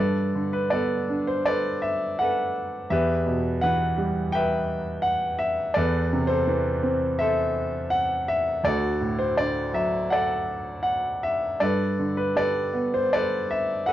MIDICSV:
0, 0, Header, 1, 2, 480
1, 0, Start_track
1, 0, Key_signature, 1, "major"
1, 0, Tempo, 741656
1, 1418, Tempo, 713436
1, 1900, Time_signature, 4, 2, 24, 8
1, 3818, Tempo, 722892
1, 6698, Tempo, 750939
1, 9146, End_track
2, 0, Start_track
2, 0, Title_t, "Grand piano"
2, 0, Program_c, 0, 0
2, 0, Note_on_c, 0, 43, 42
2, 0, Note_on_c, 0, 69, 40
2, 0, Note_on_c, 0, 71, 38
2, 0, Note_on_c, 0, 74, 54
2, 83, Control_c, 0, 64, 127
2, 225, Note_on_c, 0, 50, 37
2, 333, Note_off_c, 0, 71, 0
2, 342, Note_on_c, 0, 71, 49
2, 352, Note_off_c, 0, 74, 0
2, 455, Note_on_c, 0, 74, 56
2, 464, Note_off_c, 0, 71, 0
2, 465, Note_on_c, 0, 59, 38
2, 467, Note_off_c, 0, 69, 0
2, 473, Note_on_c, 0, 71, 41
2, 477, Note_on_c, 0, 69, 43
2, 706, Note_on_c, 0, 62, 38
2, 824, Note_on_c, 0, 72, 57
2, 835, Note_off_c, 0, 74, 0
2, 941, Note_on_c, 0, 74, 60
2, 942, Note_off_c, 0, 71, 0
2, 946, Note_off_c, 0, 69, 0
2, 950, Note_off_c, 0, 72, 0
2, 952, Note_on_c, 0, 71, 41
2, 955, Note_on_c, 0, 69, 38
2, 1160, Note_off_c, 0, 50, 0
2, 1176, Note_on_c, 0, 76, 53
2, 1188, Note_off_c, 0, 74, 0
2, 1392, Note_off_c, 0, 59, 0
2, 1416, Note_on_c, 0, 78, 60
2, 1421, Note_off_c, 0, 69, 0
2, 1422, Note_off_c, 0, 76, 0
2, 1424, Note_off_c, 0, 71, 0
2, 1431, Note_on_c, 0, 69, 43
2, 1434, Note_on_c, 0, 71, 43
2, 1631, Note_off_c, 0, 62, 0
2, 1753, Note_off_c, 0, 78, 0
2, 1871, Note_off_c, 0, 43, 0
2, 1879, Note_off_c, 0, 69, 0
2, 1880, Note_off_c, 0, 71, 0
2, 1896, Note_on_c, 0, 40, 46
2, 1896, Note_on_c, 0, 76, 63
2, 1907, Note_on_c, 0, 67, 40
2, 1907, Note_on_c, 0, 71, 44
2, 1908, Control_c, 0, 64, 0
2, 2029, Control_c, 0, 64, 127
2, 2140, Note_on_c, 0, 47, 40
2, 2352, Note_off_c, 0, 76, 0
2, 2375, Note_on_c, 0, 78, 64
2, 2376, Note_off_c, 0, 71, 0
2, 2386, Note_on_c, 0, 71, 46
2, 2389, Note_on_c, 0, 52, 42
2, 2620, Note_on_c, 0, 55, 42
2, 2840, Note_off_c, 0, 67, 0
2, 2854, Note_on_c, 0, 79, 67
2, 2859, Note_off_c, 0, 71, 0
2, 2869, Note_on_c, 0, 71, 51
2, 2871, Note_on_c, 0, 76, 47
2, 2875, Note_off_c, 0, 78, 0
2, 3075, Note_off_c, 0, 47, 0
2, 3317, Note_off_c, 0, 52, 0
2, 3321, Note_on_c, 0, 78, 64
2, 3349, Note_off_c, 0, 79, 0
2, 3550, Note_off_c, 0, 55, 0
2, 3556, Note_off_c, 0, 76, 0
2, 3566, Note_on_c, 0, 76, 64
2, 3576, Note_off_c, 0, 78, 0
2, 3791, Note_off_c, 0, 40, 0
2, 3796, Note_off_c, 0, 71, 0
2, 3805, Note_on_c, 0, 74, 62
2, 3821, Note_off_c, 0, 76, 0
2, 3821, Note_on_c, 0, 40, 54
2, 3822, Note_on_c, 0, 69, 45
2, 3822, Note_on_c, 0, 71, 48
2, 3826, Control_c, 0, 64, 0
2, 3963, Control_c, 0, 64, 127
2, 4064, Note_on_c, 0, 48, 43
2, 4160, Note_on_c, 0, 72, 63
2, 4166, Note_off_c, 0, 69, 0
2, 4175, Note_on_c, 0, 69, 44
2, 4183, Note_off_c, 0, 74, 0
2, 4294, Note_on_c, 0, 52, 46
2, 4531, Note_on_c, 0, 60, 42
2, 4739, Note_off_c, 0, 72, 0
2, 4749, Note_off_c, 0, 71, 0
2, 4767, Note_on_c, 0, 76, 69
2, 4773, Note_off_c, 0, 69, 0
2, 4778, Note_on_c, 0, 72, 51
2, 4783, Note_on_c, 0, 69, 52
2, 4987, Note_off_c, 0, 48, 0
2, 5222, Note_off_c, 0, 52, 0
2, 5240, Note_on_c, 0, 78, 69
2, 5262, Note_off_c, 0, 76, 0
2, 5462, Note_off_c, 0, 60, 0
2, 5494, Note_off_c, 0, 78, 0
2, 5494, Note_on_c, 0, 76, 64
2, 5706, Note_off_c, 0, 40, 0
2, 5707, Note_off_c, 0, 72, 0
2, 5710, Note_off_c, 0, 69, 0
2, 5730, Note_on_c, 0, 38, 47
2, 5735, Note_on_c, 0, 74, 66
2, 5740, Note_off_c, 0, 76, 0
2, 5741, Control_c, 0, 64, 0
2, 5748, Note_on_c, 0, 69, 46
2, 5749, Note_on_c, 0, 66, 50
2, 5860, Control_c, 0, 64, 127
2, 5977, Note_on_c, 0, 45, 38
2, 6094, Note_on_c, 0, 72, 57
2, 6106, Note_off_c, 0, 74, 0
2, 6219, Note_off_c, 0, 72, 0
2, 6219, Note_on_c, 0, 74, 64
2, 6225, Note_on_c, 0, 50, 41
2, 6458, Note_on_c, 0, 54, 40
2, 6464, Note_on_c, 0, 76, 58
2, 6467, Note_off_c, 0, 74, 0
2, 6681, Note_off_c, 0, 69, 0
2, 6682, Note_off_c, 0, 66, 0
2, 6702, Note_on_c, 0, 78, 63
2, 6709, Note_off_c, 0, 76, 0
2, 6715, Note_on_c, 0, 69, 43
2, 6716, Note_on_c, 0, 74, 47
2, 6911, Note_off_c, 0, 45, 0
2, 7154, Note_off_c, 0, 50, 0
2, 7155, Note_off_c, 0, 78, 0
2, 7165, Note_on_c, 0, 78, 63
2, 7394, Note_off_c, 0, 54, 0
2, 7422, Note_off_c, 0, 78, 0
2, 7424, Note_on_c, 0, 76, 61
2, 7637, Note_off_c, 0, 38, 0
2, 7646, Note_off_c, 0, 69, 0
2, 7646, Note_off_c, 0, 74, 0
2, 7662, Note_on_c, 0, 74, 60
2, 7663, Note_on_c, 0, 43, 45
2, 7671, Control_c, 0, 64, 0
2, 7673, Note_off_c, 0, 76, 0
2, 7676, Note_on_c, 0, 69, 46
2, 7678, Note_on_c, 0, 71, 44
2, 7787, Control_c, 0, 64, 127
2, 7911, Note_on_c, 0, 50, 39
2, 8015, Note_off_c, 0, 71, 0
2, 8025, Note_on_c, 0, 71, 55
2, 8039, Note_off_c, 0, 74, 0
2, 8145, Note_on_c, 0, 55, 38
2, 8151, Note_off_c, 0, 69, 0
2, 8151, Note_on_c, 0, 74, 63
2, 8152, Note_off_c, 0, 71, 0
2, 8161, Note_on_c, 0, 69, 44
2, 8161, Note_on_c, 0, 71, 43
2, 8387, Note_on_c, 0, 59, 37
2, 8516, Note_on_c, 0, 72, 65
2, 8520, Note_off_c, 0, 74, 0
2, 8634, Note_off_c, 0, 72, 0
2, 8637, Note_off_c, 0, 69, 0
2, 8638, Note_off_c, 0, 71, 0
2, 8638, Note_on_c, 0, 74, 64
2, 8647, Note_on_c, 0, 69, 45
2, 8647, Note_on_c, 0, 71, 46
2, 8839, Note_off_c, 0, 50, 0
2, 8875, Note_off_c, 0, 74, 0
2, 8878, Note_on_c, 0, 76, 61
2, 9071, Note_off_c, 0, 55, 0
2, 9091, Note_off_c, 0, 76, 0
2, 9106, Note_on_c, 0, 78, 64
2, 9109, Note_off_c, 0, 71, 0
2, 9110, Note_off_c, 0, 69, 0
2, 9119, Note_on_c, 0, 71, 49
2, 9120, Note_on_c, 0, 69, 52
2, 9146, Note_off_c, 0, 43, 0
2, 9146, Note_off_c, 0, 59, 0
2, 9146, Note_off_c, 0, 69, 0
2, 9146, Note_off_c, 0, 71, 0
2, 9146, Note_off_c, 0, 78, 0
2, 9146, End_track
0, 0, End_of_file